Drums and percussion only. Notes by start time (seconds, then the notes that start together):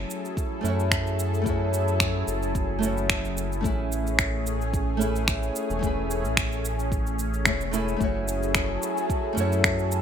0.10 shaker
0.25 shaker
0.37 kick, shaker
0.65 shaker
0.80 shaker
0.91 finger snap, kick, shaker
1.07 shaker
1.19 shaker
1.34 shaker
1.46 kick, shaker
1.74 shaker
1.88 shaker
2.00 finger snap, kick, shaker
2.28 shaker
2.43 shaker
2.55 kick, shaker
2.83 shaker
2.97 shaker
3.10 finger snap, kick, shaker
3.25 shaker
3.37 shaker
3.52 shaker
3.64 kick, shaker
3.92 shaker
4.07 shaker
4.19 finger snap, kick, shaker
4.47 shaker
4.61 shaker
4.74 kick, shaker
5.01 shaker
5.16 shaker
5.28 finger snap, kick, shaker
5.43 shaker
5.56 shaker
5.70 shaker
5.83 kick, shaker
6.11 shaker
6.25 shaker
6.37 finger snap, kick, shaker
6.52 shaker
6.65 shaker
6.79 shaker
6.92 kick, shaker
7.07 shaker
7.19 shaker
7.34 shaker
7.46 finger snap, kick, shaker
7.61 shaker
7.73 shaker
7.88 shaker
8.01 kick, shaker
8.28 shaker
8.43 shaker
8.55 finger snap, kick, shaker
8.83 shaker
8.97 shaker
9.10 kick, shaker
9.38 shaker
9.52 shaker
9.64 finger snap, kick, shaker
9.79 shaker
9.92 shaker